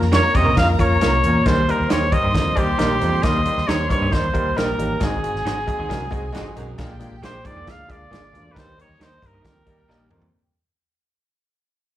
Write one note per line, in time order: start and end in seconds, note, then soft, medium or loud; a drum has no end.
0.00 0.18 F2 medium
0.00 1.42 A#4 loud
0.00 1.42 A#5 loud
0.00 snare soft
0.11 0.24 F3 medium
0.11 0.24 A#3 medium
0.11 0.22 C#4 medium
0.11 0.25 C#4 medium
0.11 0.25 F4 medium
0.11 0.22 F4 medium
0.11 0.25 A#4 medium
0.11 0.22 A#4 medium
0.11 0.33 C#5 medium
0.11 0.23 C#5 medium
0.11 0.37 C#5 loud
0.11 snare loud
0.11 closed hi-hat medium
0.34 0.43 F2 medium
0.34 0.52 C3 medium
0.34 0.47 F3 medium
0.34 0.47 A#3 medium
0.34 0.47 C#4 medium
0.34 0.47 F4 medium
0.34 0.47 A#4 medium
0.34 0.57 D#5 medium
0.34 0.57 D#5 loud
0.34 kick medium
0.34 closed hi-hat medium
0.45 0.54 A#2 loud
0.45 0.54 C#4 medium
0.45 0.54 F4 medium
0.45 0.53 A#4 medium
0.45 0.53 C#5 medium
0.56 0.74 F2 loud
0.56 0.69 F3 medium
0.56 0.69 A#3 medium
0.56 0.69 C#4 medium
0.56 0.69 F4 medium
0.56 0.69 A#4 medium
0.56 0.67 F5 medium
0.56 0.68 F5 loud
0.56 kick loud
0.56 snare loud
0.56 closed hi-hat loud
0.78 0.96 F2 loud
0.78 0.91 F3 loud
0.78 0.92 A#3 medium
0.78 0.92 C#4 medium
0.78 0.92 F4 loud
0.78 0.91 A#4 loud
0.78 1.42 C#5 medium
0.78 1.48 C#5 loud
0.78 kick loud
0.78 closed hi-hat medium
1.01 1.19 C2 loud
1.01 1.14 F3 loud
1.01 1.14 A#3 medium
1.01 1.14 C#4 medium
1.01 1.11 C#4 medium
1.01 1.14 F4 medium
1.01 1.11 F4 medium
1.01 1.14 A#4 loud
1.01 1.11 A#4 medium
1.01 1.12 C#5 loud
1.01 snare loud
1.01 closed hi-hat loud
1.24 1.40 E2 loud
1.24 1.41 A#2 medium
1.24 1.36 F3 medium
1.24 1.36 A#3 medium
1.24 1.36 C#4 medium
1.24 1.36 F4 medium
1.24 1.37 A#4 medium
1.24 closed hi-hat medium
1.46 1.71 D#2 loud
1.46 1.64 D#2 medium
1.46 1.58 G3 loud
1.46 1.58 A#3 medium
1.46 1.58 D#4 medium
1.46 1.59 G4 medium
1.46 1.58 A#4 loud
1.46 4.52 C5 loud
1.46 1.68 C5 loud
1.46 1.72 C5 loud
1.46 4.52 C6 loud
1.46 kick loud
1.46 snare loud
1.46 closed hi-hat loud
1.68 1.80 G3 medium
1.68 1.81 A#3 medium
1.68 1.81 D#4 medium
1.68 1.81 G4 medium
1.68 1.90 A#4 medium
1.68 1.81 A#4 medium
1.68 1.91 A#4 loud
1.68 closed hi-hat medium
1.80 1.88 D#2 medium
1.89 2.16 D#2 loud
1.89 2.02 G3 medium
1.89 2.02 A#3 medium
1.89 2.02 D#4 medium
1.89 2.00 D#4 medium
1.89 2.02 G4 medium
1.89 2.00 G4 loud
1.89 2.02 A#4 medium
1.89 2.00 A#4 medium
1.89 2.10 C#5 medium
1.89 2.14 C#5 loud
1.89 2.01 D#5 medium
1.89 snare loud
1.89 closed hi-hat medium
2.12 2.24 G3 medium
2.12 2.25 A#3 medium
2.12 2.25 D#4 medium
2.12 2.25 G4 medium
2.12 2.25 A#4 medium
2.12 2.59 D#5 loud
2.12 2.57 D#5 medium
2.12 kick loud
2.12 closed hi-hat medium
2.23 2.32 G2 medium
2.23 2.32 D#4 soft
2.23 2.31 G4 medium
2.23 2.31 A#4 medium
2.23 2.31 D#5 medium
2.34 2.51 D#2 loud
2.34 2.53 F2 medium
2.34 2.47 G3 medium
2.34 2.47 A#3 medium
2.34 2.47 D#4 medium
2.34 2.47 G4 medium
2.34 2.47 A#4 medium
2.34 kick loud
2.34 snare loud
2.34 closed hi-hat loud
2.55 2.74 D#2 loud
2.55 2.68 G3 loud
2.55 2.68 A#3 medium
2.55 2.68 D#4 medium
2.55 2.69 G4 medium
2.55 3.25 G4 loud
2.55 3.24 G4 medium
2.55 2.69 A#4 loud
2.55 kick loud
2.55 closed hi-hat medium
2.78 2.96 A#1 loud
2.78 2.97 D#2 medium
2.78 2.91 G3 loud
2.78 2.91 A#3 medium
2.78 2.91 D#4 medium
2.78 2.88 D#4 medium
2.78 2.91 G4 medium
2.78 2.89 G4 medium
2.78 2.91 A#4 loud
2.78 2.89 A#4 medium
2.78 2.89 D#5 loud
2.78 snare loud
2.78 closed hi-hat loud
3.00 3.18 E2 medium
3.00 3.19 F2 medium
3.00 3.13 G3 medium
3.00 3.13 A#3 medium
3.00 3.13 D#4 medium
3.00 3.13 G4 medium
3.00 3.14 A#4 medium
3.00 closed hi-hat medium
3.23 3.48 D#2 loud
3.23 3.41 D#2 medium
3.23 3.36 G3 loud
3.23 3.36 A#3 medium
3.23 3.36 D#4 medium
3.23 3.36 G4 medium
3.23 3.36 A#4 loud
3.23 3.69 D#5 loud
3.23 3.68 D#5 medium
3.23 kick loud
3.23 snare loud
3.23 closed hi-hat loud
3.45 3.58 G3 medium
3.45 3.58 A#3 medium
3.45 3.58 D#4 medium
3.45 3.58 G4 medium
3.45 3.58 A#4 medium
3.45 closed hi-hat medium
3.58 3.65 D#2 medium
3.58 snare soft
3.67 3.93 D#2 medium
3.67 3.80 G3 medium
3.67 3.80 A#3 medium
3.67 3.80 D#4 medium
3.67 3.78 D#4 medium
3.67 3.80 G4 medium
3.67 3.78 G4 medium
3.67 3.80 A#4 medium
3.67 3.78 A#4 medium
3.67 3.90 C#5 loud
3.67 3.91 C#5 medium
3.67 3.78 D#5 medium
3.67 snare loud
3.67 closed hi-hat medium
3.88 4.08 G2 medium
3.88 4.02 G3 medium
3.88 4.02 A#3 medium
3.88 4.02 D#4 medium
3.88 4.02 G4 medium
3.88 4.02 A#4 medium
3.88 4.14 C#5 loud
3.88 4.11 C#5 medium
3.88 kick medium
3.88 closed hi-hat medium
4.02 4.10 G2 medium
4.02 4.10 D#4 medium
4.02 4.09 G4 medium
4.02 4.10 A#4 medium
4.02 4.09 D#5 medium
4.11 4.29 D#2 loud
4.11 4.24 G3 medium
4.11 4.24 A#3 medium
4.11 4.24 D#4 medium
4.11 4.24 G4 medium
4.11 4.24 A#4 medium
4.11 4.59 C5 medium
4.11 4.57 C5 medium
4.11 kick loud
4.11 snare loud
4.11 closed hi-hat medium
4.33 4.51 D#2 loud
4.33 4.46 G3 loud
4.33 4.46 A#3 medium
4.33 4.46 D#4 medium
4.33 4.46 G4 loud
4.33 4.46 A#4 loud
4.33 kick loud
4.33 closed hi-hat medium
4.56 4.73 A#1 loud
4.56 4.69 G3 medium
4.56 4.69 A#3 loud
4.56 4.69 D#4 medium
4.56 4.67 D#4 medium
4.56 4.69 G4 medium
4.56 4.67 G4 medium
4.56 4.69 A#4 loud
4.56 5.00 A#4 medium
4.56 5.05 A#4 medium
4.56 4.67 A#4 medium
4.56 5.02 A#4 medium
4.56 4.67 D#5 medium
4.56 5.00 A#5 medium
4.56 snare loud
4.56 closed hi-hat medium
4.78 4.95 A1 medium
4.78 4.96 D#2 medium
4.78 4.91 G3 medium
4.78 4.91 A#3 medium
4.78 4.91 D#4 medium
4.78 4.91 G4 medium
4.78 4.91 A#4 medium
4.78 closed hi-hat medium
5.00 5.26 G#1 loud
5.00 5.18 G#2 medium
5.00 5.13 G#3 loud
5.00 5.13 C4 medium
5.00 5.13 D#4 medium
5.00 5.13 F#4 medium
5.00 6.74 G#4 loud
5.00 5.13 G#4 loud
5.00 6.57 G#4 medium
5.00 6.57 G#4 loud
5.00 6.75 G#5 loud
5.00 kick loud
5.00 snare loud
5.00 closed hi-hat loud
5.23 5.35 G#3 medium
5.23 5.35 C4 medium
5.23 5.35 D#4 medium
5.23 5.35 F#4 medium
5.23 5.36 G#4 medium
5.23 closed hi-hat medium
5.34 5.42 G#1 medium
5.34 snare soft
5.45 5.70 G#1 medium
5.45 5.58 G#3 medium
5.45 5.58 C4 medium
5.45 5.58 D#4 medium
5.45 5.55 D#4 medium
5.45 5.58 F#4 medium
5.45 5.55 F#4 medium
5.45 5.58 G#4 medium
5.45 5.56 C5 medium
5.45 5.56 D#5 medium
5.45 snare loud
5.45 closed hi-hat medium
5.67 5.79 G#3 medium
5.67 5.80 C4 medium
5.67 5.80 D#4 medium
5.67 5.80 F#4 medium
5.67 5.79 G#4 medium
5.67 kick loud
5.67 closed hi-hat medium
5.79 5.87 D#2 medium
5.79 5.87 D#4 medium
5.79 5.87 F#4 medium
5.79 5.87 C5 medium
5.79 5.86 D#5 medium
5.89 6.06 C2 loud
5.89 6.07 F#2 medium
5.89 6.02 G#3 loud
5.89 6.02 C4 medium
5.89 6.02 D#4 medium
5.89 6.02 F#4 medium
5.89 6.02 A#4 loud
5.89 kick loud
5.89 snare loud
5.89 closed hi-hat loud
6.11 6.29 C2 loud
6.11 6.24 G#3 loud
6.11 6.24 C4 loud
6.11 6.24 D#4 loud
6.11 6.24 F#4 loud
6.11 6.24 G#4 loud
6.11 kick loud
6.11 closed hi-hat medium
6.32 6.52 F2 loud
6.32 6.46 G#3 loud
6.32 6.46 C4 loud
6.32 6.46 D#4 loud
6.32 6.44 D#4 medium
6.32 6.46 F#4 loud
6.32 6.44 F#4 medium
6.32 6.46 G#4 loud
6.32 6.44 C5 medium
6.32 6.45 D#5 medium
6.32 snare loud
6.32 closed hi-hat loud
6.55 6.73 B1 loud
6.55 6.74 F#2 medium
6.55 6.68 G#3 medium
6.55 6.68 C4 medium
6.55 6.68 D#4 medium
6.55 6.68 F#4 medium
6.55 6.69 G#4 loud
6.55 closed hi-hat medium
6.78 7.03 A#1 loud
6.78 6.96 A#2 medium
6.78 6.90 G#3 loud
6.78 6.91 A#3 loud
6.78 6.91 D4 loud
6.78 6.91 F4 loud
6.78 7.66 G4 medium
6.78 6.91 G#4 loud
6.78 7.65 G5 loud
6.78 kick loud
6.78 snare loud
6.78 closed hi-hat medium
6.99 7.12 G#3 loud
6.99 7.12 A#3 medium
6.99 7.12 D4 medium
6.99 7.12 F4 medium
6.99 7.12 G#4 loud
6.99 closed hi-hat medium
7.11 7.19 A#1 medium
7.22 7.47 A#1 loud
7.22 7.35 G#3 medium
7.22 7.35 A#3 medium
7.22 7.32 A#3 medium
7.22 7.35 D4 medium
7.22 7.35 F4 medium
7.22 7.33 F4 medium
7.22 7.35 G#4 medium
7.22 7.33 G#4 medium
7.22 7.44 C5 medium
7.22 7.47 C5 loud
7.22 7.33 D5 medium
7.22 snare loud
7.22 closed hi-hat medium
7.44 7.63 G#2 medium
7.44 7.57 G#3 medium
7.44 7.57 A#3 medium
7.44 7.57 D4 medium
7.44 7.57 F4 medium
7.44 7.57 G#4 medium
7.44 7.72 D5 loud
7.44 kick loud
7.44 closed hi-hat medium
7.48 7.68 D5 medium
7.55 7.64 F2 medium
7.55 7.64 A#3 medium
7.55 7.64 F4 medium
7.55 7.64 G#4 medium
7.55 7.63 D5 medium
7.66 7.84 D2 loud
7.66 7.79 G#3 medium
7.66 7.79 A#3 medium
7.66 7.79 D4 medium
7.66 7.79 F4 medium
7.66 8.54 F4 medium
7.66 7.79 G#4 medium
7.66 8.54 F5 loud
7.66 kick loud
7.66 snare loud
7.66 closed hi-hat loud
7.70 7.93 F5 loud
7.88 8.06 D2 loud
7.88 8.01 G#3 loud
7.88 8.01 A#3 medium
7.88 8.01 D4 medium
7.88 8.01 F4 medium
7.88 8.01 G#4 loud
7.88 8.53 D5 loud
7.88 kick loud
7.88 closed hi-hat medium
7.92 8.52 D5 medium
8.11 8.34 G#1 medium
8.11 8.24 G#3 loud
8.11 8.23 A#3 medium
8.11 8.21 A#3 medium
8.11 8.23 D4 medium
8.11 8.24 F4 medium
8.11 8.21 F4 medium
8.11 8.24 G#4 loud
8.11 8.21 G#4 loud
8.11 8.22 D5 loud
8.11 snare loud
8.11 closed hi-hat loud
8.33 8.51 D2 medium
8.33 8.50 E2 medium
8.33 8.46 G#3 medium
8.33 8.46 A#3 medium
8.33 8.46 D4 medium
8.33 8.46 F4 medium
8.33 8.46 G#4 medium
8.33 closed hi-hat medium
8.51 8.67 G3 loud
8.51 8.68 A#3 medium
8.51 8.67 D#4 medium
8.51 8.68 A#4 loud
8.51 8.56 B4 medium
8.51 8.60 B4 medium
8.55 8.74 D#2 loud
8.55 8.81 D#2 loud
8.55 9.43 D#4 medium
8.55 8.68 G4 medium
8.55 8.79 C5 loud
8.55 9.43 D#5 loud
8.55 kick loud
8.55 snare loud
8.55 closed hi-hat loud
8.60 8.80 C5 medium
8.76 8.89 G3 medium
8.76 8.90 A#3 medium
8.76 8.90 D#4 medium
8.76 8.90 G4 medium
8.76 8.90 A#4 medium
8.76 closed hi-hat medium
8.81 9.00 C#5 medium
8.81 9.05 C#5 loud
8.89 8.97 D#2 medium
8.99 9.17 D#2 medium
8.99 9.12 G3 medium
8.99 9.12 A#3 medium
8.99 9.12 D#4 medium
8.99 9.10 D#4 medium
8.99 9.12 G4 medium
8.99 9.10 G4 medium
8.99 9.12 A#4 medium
8.99 9.10 A#4 loud
8.99 9.10 D#5 loud
8.99 snare loud
8.99 closed hi-hat medium
9.03 9.28 C5 loud
9.03 9.24 C5 medium
9.21 9.39 G2 loud
9.21 9.34 G3 medium
9.21 9.34 A#3 medium
9.21 9.35 D#4 medium
9.21 9.34 G4 medium
9.21 9.34 A#4 medium
9.21 kick loud
9.21 closed hi-hat medium
9.27 10.13 A#4 medium
9.33 9.42 D#4 medium
9.33 9.41 G4 medium
9.33 9.41 A#4 medium
9.33 9.41 D#5 medium
9.43 9.61 D#2 loud
9.43 9.62 F2 medium
9.43 9.56 G3 medium
9.43 9.56 A#3 medium
9.43 9.56 D#4 medium
9.43 9.56 G4 medium
9.43 10.32 G4 medium
9.43 9.56 A#4 medium
9.43 10.32 G5 loud
9.43 kick loud
9.43 snare loud
9.43 closed hi-hat loud
9.66 9.84 D#2 medium
9.66 9.79 G3 loud
9.66 9.79 A#3 medium
9.66 9.79 D#4 medium
9.66 9.79 G4 medium
9.66 9.79 A#4 loud
9.66 kick medium
9.66 closed hi-hat medium
9.89 10.06 D#2 loud
9.89 10.01 G3 loud
9.89 10.01 A#3 loud
9.89 9.98 D#4 medium
9.89 10.01 D#4 loud
9.89 9.99 G4 medium
9.89 10.01 G4 loud
9.89 9.99 A#4 medium
9.89 10.02 A#4 loud
9.89 9.99 D#5 medium
9.89 snare medium
10.10 10.27 E2 medium
10.10 10.29 F2 medium
10.10 10.23 G3 medium
10.10 10.23 A#3 medium
10.10 10.23 D#4 medium
10.10 10.23 G4 medium
10.10 10.23 A#4 medium
10.10 mid tom loud
10.22 floor tom loud